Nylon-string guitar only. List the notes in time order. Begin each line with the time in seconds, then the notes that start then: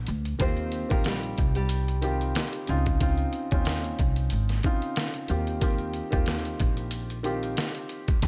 0.41 C4 C5
0.91 A#3 A#4
1.07 G3 G4
1.56 G3 G4